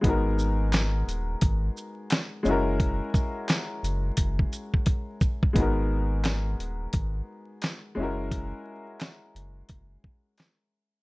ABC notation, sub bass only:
X:1
M:4/4
L:1/8
Q:"Swing 16ths" 1/4=87
K:G#m
V:1 name="Sub bass" clef=bass
G,,,3 D,,, G,,, z2 F,,,- | F,,, z2 F,,, F,,, z3 | G,,,3 D,,, G,,, z2 F,,,- | F,,, z2 F,,, F,,, z3 |]